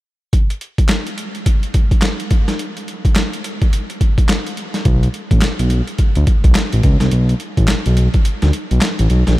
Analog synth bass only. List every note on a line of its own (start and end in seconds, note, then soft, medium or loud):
4.86 5.08 B1 loud
5.31 5.40 A1 medium
5.42 5.49 B1 soft
5.59 5.82 B1 medium
6.16 6.25 D2 medium
6.44 6.53 B1 medium
6.73 6.82 A1 loud
6.84 6.98 C#2 loud
7.01 7.10 C2 medium
7.12 7.34 B1 loud
7.57 7.66 A1 medium
7.68 7.75 B1 soft
7.86 8.09 B1 medium
8.43 8.51 D2 medium
8.71 8.80 B1 medium
8.99 9.08 A1 loud
9.10 9.24 B1 medium
9.28 9.36 A#1 loud